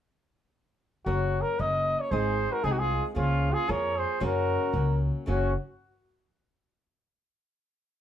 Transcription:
1.06 upright bass F#1, nylon-string guitar F#2 C#3 F#3 A#3 C#4 A#4, trumpet F#4
1.41 trumpet A#4
1.59 upright bass F#1, nylon-string guitar F#3 A#3 C#4 A#4, trumpet D#5
2.00 trumpet C#5
2.11 upright bass G#1, nylon-string guitar G#3 C4 D#4 G#4, trumpet G#4 C5
2.51 trumpet F#4 A#4
2.64 upright bass C2, nylon-string guitar G#3 C4 D#4 G#4, trumpet D#4 G#4
2.71 trumpet D#4 F#4
2.79 trumpet F4 G#4
3.15 upright bass C#2, nylon-string guitar C#3 F3 A#3 F4 G#4, trumpet C#4 F4
3.50 trumpet F4 G#4
3.68 upright bass F2, nylon-string guitar F3 A#3 F4 G#4, trumpet A#4 C#5
3.96 trumpet G#4 C5
4.20 nylon-string guitar F#2 C#3 F#3 A#3 C#4 F#4, upright bass F#2, trumpet F#4
4.25 trumpet A#4
4.73 upright bass C#2, nylon-string guitar F#3 A#3 C#4 F#4
5.26 upright bass F#1, nylon-string guitar F#2 C#3 F#3 A#3 C#4 F#4, trumpet C#4 F#4

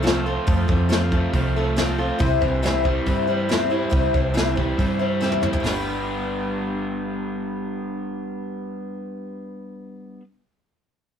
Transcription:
Already playing: fingered electric bass C2, overdriven electric guitar F3 A3
0.03 twelve-string acoustic guitar F3 A3 C4 F4 A4, snare, open hi-hat
0.26 twelve-string acoustic guitar C4 F4 A4
0.47 fingered electric bass F2, overdriven electric guitar F2, twelve-string acoustic guitar F3 A3 C4 F4 A4, kick, open hi-hat
0.68 fingered electric bass F2, overdriven electric guitar C3, twelve-string acoustic guitar C4 F4 A4, kick
0.89 twelve-string acoustic guitar F3 A3 C4 F4 A4, snare, open hi-hat
1.12 overdriven electric guitar A3, twelve-string acoustic guitar C4 F4 A4, kick
1.33 fingered electric bass C2, overdriven electric guitar F3, twelve-string acoustic guitar A3 C4 F4 A4, kick, open hi-hat
1.56 overdriven electric guitar A3, twelve-string acoustic guitar C4 F4 A4
1.76 twelve-string acoustic guitar F3 A3 C4 F4 A4, snare, open hi-hat
1.98 twelve-string acoustic guitar C4 F4 A4
2.19 fingered electric bass C2, twelve-string acoustic guitar C3 E3 G3 C4 E4 C5, kick, open hi-hat
2.41 fingered electric bass C2, overdriven electric guitar E3, twelve-string acoustic guitar G3 C4 E4 C5, kick
2.62 twelve-string acoustic guitar C3 E3 G3 C4 E4 C5, snare, open hi-hat
2.84 twelve-string acoustic guitar G3 C4 E4 C5, kick
3.06 fingered electric bass G2, overdriven electric guitar E3, twelve-string acoustic guitar G3 C4 E4 C5, kick, open hi-hat
3.27 twelve-string acoustic guitar G3 C4 E4 C5
3.49 twelve-string acoustic guitar C3 E3 G3 C4 E4 C5, snare, open hi-hat
3.70 twelve-string acoustic guitar G3 C4 E4 C5
3.90 fingered electric bass C2, twelve-string acoustic guitar C3 E3 G3 C4 E4 C5, kick, open hi-hat
4.14 fingered electric bass C2, overdriven electric guitar E3, twelve-string acoustic guitar G3 C4 E4 C5, kick
4.34 twelve-string acoustic guitar C3 E3 G3 C4 E4 C5, snare, open hi-hat
4.56 twelve-string acoustic guitar G3 C4 E4 C5, kick
4.77 fingered electric bass G2, overdriven electric guitar E3, twelve-string acoustic guitar G3 C4 E4 C5, kick, open hi-hat
4.99 twelve-string acoustic guitar G3 C4 E4 C5
5.21 twelve-string acoustic guitar C3 E3 G3 C4 E4 C5, snare
5.32 high tom
5.42 twelve-string acoustic guitar G3 C4 E4 C5, mid tom
5.53 floor tom
5.60 fingered electric bass G1, twelve-string acoustic guitar G3
5.64 overdriven electric guitar B3 B4, twelve-string acoustic guitar D4, snare, open hi-hat
5.71 twelve-string acoustic guitar G4
5.76 twelve-string acoustic guitar B4

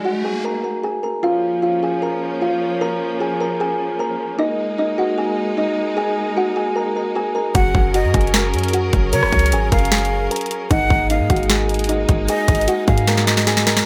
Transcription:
Already playing: riser
0.05 kalimba F#4 F#5
0.24 kalimba G#4 G#5
0.44 kalimba A#4 A#5
0.63 kalimba A#4 A#5
0.83 kalimba G#4 G#5
1.03 kalimba A#4 A#5
1.23 string section F3 A#3 C#4, kalimba F4 F5
1.62 kalimba F4 F5
1.83 kalimba G#4 G#5
2.02 kalimba A#4 A#5
2.41 kalimba F4 F5
2.81 kalimba A#4 A#5
3.20 kalimba G#4 G#5
3.40 kalimba A#4 A#5
3.60 kalimba G#4 G#5
3.99 kalimba A#4 A#5
4.39 string section G#3 D#4, kalimba D#4 D#5
4.78 kalimba D#4 D#5
4.98 kalimba F#4 F#5
5.18 kalimba G#4 G#5
5.57 kalimba D#4 D#5
5.97 kalimba G#4 G#5
6.37 kalimba F#4 F#5
6.56 kalimba G#4 G#5
6.76 kalimba A#4 A#5
6.96 kalimba A#4 A#5
7.15 kalimba G#4 G#5
7.35 kalimba A#4 A#5
7.55 808-style bass F#1, string section F#3 C#4 G#4 A#4, kalimba F#4 F#5, flute F#5, kick, closed hi-hat
7.75 808-style bass F#1, kick
7.94 kalimba F#4 F#5, flute D#5, closed hi-hat
8.04 808-style bass F#2
8.14 808-style bass F#1, kalimba G#4 G#5, kick, closed hi-hat
8.21 closed hi-hat
8.27 closed hi-hat
8.34 kalimba A#4 A#5, snare, closed hi-hat
8.54 808-style bass F#2, closed hi-hat
8.59 closed hi-hat
8.63 closed hi-hat
8.68 closed hi-hat
8.73 kalimba F#4 F#5, closed hi-hat
8.93 808-style bass F#1, kick, closed hi-hat
9.13 808-style bass C#3, kalimba A#4 A#5, flute C#5, closed hi-hat
9.23 808-style bass F#1, cross-stick
9.32 808-style bass C#2, kick, closed hi-hat
9.39 closed hi-hat
9.46 closed hi-hat
9.52 808-style bass G#1, kalimba G#4 G#5, closed hi-hat
9.72 808-style bass F#1, kalimba A#4 A#5, flute F5, kick, closed hi-hat
9.79 closed hi-hat
9.85 closed hi-hat
9.92 kalimba G#4 G#5, snare, closed hi-hat
9.98 closed hi-hat
10.05 closed hi-hat
10.31 kalimba A#4 A#5, closed hi-hat
10.36 closed hi-hat
10.41 closed hi-hat
10.46 closed hi-hat
10.51 closed hi-hat
10.71 808-style bass G#1, string section G#3 A#3 D#4, kalimba D#4 D#5, flute F#5, kick, closed hi-hat
10.90 808-style bass G#1, kick
11.10 kalimba D#4 D#5, flute F5, closed hi-hat
11.20 808-style bass G#2
11.30 808-style bass G#1, kalimba F#4 F#5, kick, closed hi-hat
11.36 closed hi-hat
11.43 closed hi-hat
11.49 kalimba G#4 G#5, snare, closed hi-hat
11.69 closed hi-hat
11.74 closed hi-hat
11.79 closed hi-hat
11.84 closed hi-hat
11.89 kalimba D#4 D#5, closed hi-hat
12.09 808-style bass G#1, kick, closed hi-hat
12.28 kalimba G#4 G#5, flute D#5, closed hi-hat
12.48 808-style bass G#1, kick, closed hi-hat, open hi-hat
12.55 closed hi-hat
12.61 closed hi-hat
12.68 kalimba F#4 F#5, closed hi-hat
12.88 808-style bass G#2, kalimba G#4 G#5, flute F5, kick, closed hi-hat
12.98 closed hi-hat
13.07 kalimba A#4 A#5, snare, closed hi-hat
13.17 snare
13.27 kalimba A#4 A#5, flute D#5, snare
13.37 snare
13.47 kalimba G#4 G#5, snare, closed hi-hat
13.57 snare, closed hi-hat
13.66 kalimba A#4 A#5, snare, closed hi-hat
13.77 snare

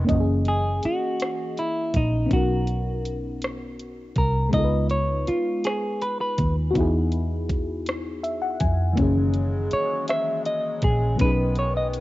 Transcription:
0.04 fm electric piano A#3 C#4
0.09 fingered electric bass F#1, fm electric piano E3 D#5, kick, closed hi-hat
0.13 fm electric piano F#4
0.20 fm electric piano G#4
0.45 clean electric guitar G#4, closed hi-hat
0.83 clean electric guitar F#4, muted fingered electric bass stroke, closed hi-hat
1.20 cross-stick, closed hi-hat
1.57 clean electric guitar E4, closed hi-hat
1.94 fingered electric bass A#1, clean electric guitar D#4, kick, closed hi-hat
2.26 fm electric piano B3 C#4
2.31 fingered electric bass B1, fm electric piano D#4 F#4, clean electric guitar F#4, kick, closed hi-hat
2.36 fm electric piano A#4
2.67 closed hi-hat
3.05 closed hi-hat
3.42 cross-stick, closed hi-hat
3.79 closed hi-hat
4.16 fingered electric bass C2, clean electric guitar A#4, kick, closed hi-hat
4.49 fm electric piano G#3 B3
4.53 fingered electric bass C#2, fm electric piano D#4 F4, clean electric guitar D#5, kick, closed hi-hat
4.58 fm electric piano A4
4.65 fm electric piano B4
4.90 clean electric guitar C#5, closed hi-hat
5.27 clean electric guitar F4, muted fingered electric bass stroke, closed hi-hat
5.64 clean electric guitar G#4, cross-stick, closed hi-hat
6.01 clean electric guitar B4, closed hi-hat
6.21 clean electric guitar B4
6.38 fingered electric bass D#2, kick, closed hi-hat
6.70 fm electric piano B3 F#4
6.75 fingered electric bass E2, fm electric piano D#4 E4, kick, closed hi-hat
6.80 fm electric piano G#4
7.12 closed hi-hat
7.49 kick, closed hi-hat
7.86 cross-stick, closed hi-hat
8.23 fm electric piano E5, closed hi-hat
8.42 fm electric piano F#5
8.60 fingered electric bass F2, fm electric piano G#5, kick, closed hi-hat
8.93 fm electric piano E3 A#3
8.97 fingered electric bass F#1, accordion C#3 F#3 G#3, fm electric piano D#3 C#4, kick, closed hi-hat
9.02 fm electric piano G#4
9.34 closed hi-hat
9.71 clean electric guitar C#5, muted fingered electric bass stroke, closed hi-hat
10.08 clean electric guitar E5, cross-stick, closed hi-hat
10.45 clean electric guitar D#5, closed hi-hat
10.82 fingered electric bass A#1, clean electric guitar G#4, kick, closed hi-hat
11.16 fm electric piano F#3 B3, accordion B3, kick, closed hi-hat
11.20 fingered electric bass B1, accordion D#3, fm electric piano C#4 D#4, clean electric guitar B4
11.25 fm electric piano G#4
11.31 fm electric piano B4
11.55 clean electric guitar C#5, closed hi-hat
11.77 clean electric guitar D#5
11.93 closed hi-hat

